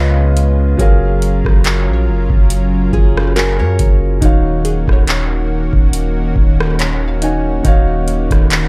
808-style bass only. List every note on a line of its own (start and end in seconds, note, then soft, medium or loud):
0.00 0.75 C#2 loud
0.79 1.43 F#1 loud
1.45 1.90 F#1 loud
1.89 2.10 A#1 loud
2.08 2.30 F#1 loud
2.30 2.91 F#1 loud
2.93 3.61 F#1 loud
3.60 3.78 F#2 loud
3.80 4.21 F#1 loud
4.22 4.85 D#1 loud
4.88 5.70 D#1 loud
5.73 6.33 D#1 loud
6.36 7.61 D#1 loud
7.65 8.28 D#1 loud
8.31 8.68 D#1 loud